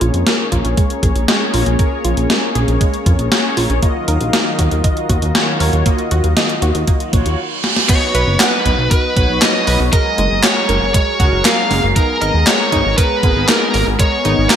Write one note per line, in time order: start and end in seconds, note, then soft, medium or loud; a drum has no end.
0.00 0.11 A#1 medium
0.00 3.79 A#3 medium
0.00 3.79 C#4 medium
0.00 0.10 F4 medium
0.00 1.25 G#4 medium
0.00 3.79 G#4 medium
0.00 1.25 A#4 medium
0.00 1.25 C#5 medium
0.00 closed hi-hat medium
0.14 0.24 F2 medium
0.14 closed hi-hat soft
0.27 0.42 A#4 medium
0.27 snare loud
0.27 closed hi-hat medium
0.52 0.62 A#1 medium
0.52 0.75 F4 medium
0.52 kick medium
0.52 closed hi-hat medium
0.65 0.75 A#1 medium
0.65 closed hi-hat soft
0.77 0.87 G#3 medium
0.77 kick loud
0.77 closed hi-hat medium
0.90 closed hi-hat soft
1.03 1.13 A#1 medium
1.03 1.26 G#4 medium
1.03 kick loud
1.03 closed hi-hat medium
1.16 1.26 A#1 medium
1.16 closed hi-hat soft
1.28 1.44 G#3 loud
1.28 1.76 G#4 medium
1.28 1.76 A#4 medium
1.28 1.76 C#5 loud
1.28 snare loud
1.28 closed hi-hat medium
1.54 1.64 A#1 medium
1.54 1.63 F4 medium
1.54 open hi-hat medium
1.66 1.77 A#1 medium
1.66 closed hi-hat soft
1.79 3.29 G#4 medium
1.79 1.95 A#4 medium
1.79 3.29 A#4 medium
1.79 3.29 C#5 medium
1.79 kick loud
1.79 closed hi-hat medium
2.05 2.15 A#1 medium
2.05 2.28 F4 medium
2.05 closed hi-hat medium
2.17 2.27 A#1 medium
2.17 closed hi-hat soft
2.30 2.39 G#3 medium
2.30 snare loud
2.30 closed hi-hat medium
2.55 2.66 A#1 medium
2.55 2.79 G#4 medium
2.55 closed hi-hat medium
2.68 2.78 A#1 medium
2.68 closed hi-hat soft
2.81 2.96 G#3 medium
2.81 kick loud
2.81 closed hi-hat medium
2.94 closed hi-hat soft
3.06 3.16 F2 medium
3.06 3.15 F4 medium
3.06 kick loud
3.06 closed hi-hat medium
3.19 3.29 A#1 medium
3.19 closed hi-hat soft
3.32 3.80 G#4 loud
3.32 3.47 A#4 medium
3.32 3.80 A#4 medium
3.32 3.80 C#5 loud
3.32 snare loud
3.32 closed hi-hat medium
3.57 3.67 A#1 medium
3.57 3.80 F4 medium
3.57 open hi-hat medium
3.70 3.80 A#1 medium
3.70 closed hi-hat soft
3.82 7.35 D#3 medium
3.82 7.35 F#3 medium
3.82 3.92 A#3 medium
3.82 7.35 D#4 medium
3.82 5.32 F4 medium
3.82 5.32 F#4 medium
3.82 7.35 A#4 medium
3.82 5.32 D#5 medium
3.82 7.35 F5 medium
3.82 kick loud
3.82 closed hi-hat medium
4.08 4.18 D#2 medium
4.08 4.31 A#4 medium
4.08 closed hi-hat medium
4.21 4.31 A#1 medium
4.21 closed hi-hat soft
4.33 4.49 A#3 loud
4.33 snare loud
4.33 closed hi-hat medium
4.59 4.69 D#2 medium
4.59 4.68 F#4 medium
4.59 kick medium
4.59 closed hi-hat medium
4.71 4.82 D#2 medium
4.71 closed hi-hat soft
4.84 5.00 D#5 medium
4.84 kick loud
4.84 closed hi-hat medium
4.97 closed hi-hat soft
5.09 5.20 D#2 medium
5.09 5.33 F#4 medium
5.09 kick loud
5.09 closed hi-hat medium
5.22 5.33 D#2 medium
5.22 closed hi-hat medium
5.35 5.44 A#3 medium
5.35 5.83 F4 loud
5.35 5.83 F#4 medium
5.35 5.83 C#5 loud
5.35 snare loud
5.35 closed hi-hat medium
5.60 5.71 D#2 loud
5.60 5.84 A#4 medium
5.60 open hi-hat medium
5.73 5.83 D#2 medium
5.73 closed hi-hat soft
5.86 6.01 A#3 loud
5.86 7.11 F4 medium
5.86 7.11 F#4 medium
5.86 7.11 D#5 medium
5.86 kick loud
5.86 closed hi-hat medium
5.98 closed hi-hat soft
6.11 6.22 D#2 medium
6.11 6.21 F#4 medium
6.11 closed hi-hat medium
6.24 6.34 D#2 medium
6.24 closed hi-hat medium
6.37 6.52 D#5 medium
6.37 snare loud
6.37 closed hi-hat medium
6.49 closed hi-hat soft
6.62 6.72 D#2 medium
6.62 6.85 F#4 medium
6.62 closed hi-hat medium
6.75 6.85 D#2 medium
6.75 closed hi-hat medium
6.87 6.97 A#3 medium
6.87 kick loud
6.87 closed hi-hat medium
6.87 reverse cymbal medium
7.00 closed hi-hat soft
7.13 7.23 A#1 medium
7.13 7.28 A#3 medium
7.13 7.39 F4 medium
7.13 7.39 F#4 medium
7.13 7.39 C#5 loud
7.13 kick loud
7.13 closed hi-hat medium
7.26 7.36 D#2 medium
7.26 closed hi-hat medium
7.64 snare medium
7.76 snare medium
7.89 11.92 F#3 medium
7.89 8.12 B3 medium
7.89 9.91 B3 medium
7.89 9.91 D#4 medium
7.89 9.14 F#4 medium
7.89 9.14 B4 medium
7.89 8.40 C#5 medium
7.89 9.14 D#5 medium
7.89 kick loud
7.89 closed hi-hat loud
7.89 crash loud
8.15 8.25 B1 medium
8.15 8.38 B4 loud
8.15 closed hi-hat medium
8.28 8.38 F#1 medium
8.40 8.90 B4 medium
8.40 8.56 F#5 loud
8.40 snare loud
8.40 clap loud
8.40 closed hi-hat loud
8.66 8.76 B1 loud
8.66 8.89 B3 medium
8.66 kick medium
8.66 closed hi-hat medium
8.78 8.89 B1 medium
8.91 9.06 B4 medium
8.91 9.44 B4 loud
8.91 kick loud
8.91 closed hi-hat loud
9.16 9.27 B1 loud
9.16 9.90 F#4 medium
9.16 9.90 B4 medium
9.16 9.90 C#5 loud
9.16 9.26 F#5 medium
9.16 kick loud
9.16 closed hi-hat medium
9.29 9.39 B1 medium
9.42 9.65 B3 medium
9.42 9.77 D#5 loud
9.42 snare loud
9.42 clap loud
9.42 closed hi-hat loud
9.67 9.77 B1 loud
9.67 9.90 B4 loud
9.67 open hi-hat medium
9.80 9.90 B1 medium
9.93 14.56 G#3 medium
9.93 11.17 F#4 medium
9.93 11.17 G#4 medium
9.93 10.08 A#4 loud
9.93 11.17 A#4 medium
9.93 10.45 D#5 loud
9.93 14.56 A#5 medium
9.93 kick loud
9.93 closed hi-hat loud
10.18 10.28 F#1 loud
10.18 10.41 G#3 medium
10.18 closed hi-hat medium
10.31 10.41 F#1 medium
10.44 10.59 F#4 medium
10.44 10.93 C#5 loud
10.44 snare loud
10.44 clap loud
10.44 closed hi-hat medium
10.69 10.79 F#1 medium
10.69 10.78 A#4 medium
10.69 closed hi-hat medium
10.82 10.92 F#1 medium
10.94 11.18 G#3 medium
10.94 11.47 C#5 loud
10.94 kick loud
10.94 closed hi-hat loud
11.20 11.30 C#2 loud
11.20 11.43 F#4 loud
11.20 11.93 F#4 medium
11.20 11.93 G#4 medium
11.20 11.93 A#4 loud
11.20 kick loud
11.20 closed hi-hat medium
11.33 11.43 F#1 medium
11.45 11.61 A#4 loud
11.45 11.81 F5 loud
11.45 snare loud
11.45 clap loud
11.45 closed hi-hat loud
11.71 11.81 F#1 medium
11.71 11.94 G#3 medium
11.71 open hi-hat medium
11.83 11.94 F#1 medium
11.96 14.56 B3 medium
11.96 13.21 B3 medium
11.96 12.12 D#4 medium
11.96 13.21 G#4 medium
11.96 12.20 A#4 loud
11.96 13.21 A#4 medium
11.96 kick loud
11.96 closed hi-hat loud
12.21 12.32 G#1 medium
12.21 12.31 A#4 medium
12.21 12.48 D#5 loud
12.21 closed hi-hat medium
12.34 12.44 D#2 medium
12.47 12.70 G#3 medium
12.47 12.97 C#5 loud
12.47 snare loud
12.47 clap loud
12.47 closed hi-hat loud
12.72 12.83 G#1 loud
12.72 12.96 D#4 loud
12.72 kick medium
12.72 closed hi-hat medium
12.85 12.95 G#1 medium
12.98 13.13 A#4 loud
12.98 13.45 B4 loud
12.98 kick loud
12.98 closed hi-hat loud
13.23 13.33 G#1 loud
13.23 13.46 G#3 medium
13.23 13.96 B3 loud
13.23 13.96 G#4 medium
13.23 13.96 A#4 loud
13.23 kick loud
13.23 closed hi-hat medium
13.36 13.46 G#1 medium
13.49 13.64 D#4 medium
13.49 13.84 A#4 medium
13.49 snare loud
13.49 clap medium
13.49 closed hi-hat loud
13.74 13.84 G#1 medium
13.74 13.83 A#4 medium
13.74 open hi-hat medium
13.87 13.97 G#1 medium
13.99 14.23 G#3 medium
13.99 14.56 B3 medium
13.99 14.56 G#4 medium
13.99 14.56 A#4 medium
13.99 14.47 C#5 loud
13.99 kick loud
13.99 closed hi-hat medium
14.25 14.35 G#1 medium
14.25 14.48 D#4 loud
14.25 closed hi-hat medium
14.38 14.48 G#1 medium
14.50 14.56 A#4 loud
14.50 14.56 B4 medium
14.50 snare loud
14.50 clap medium
14.50 closed hi-hat medium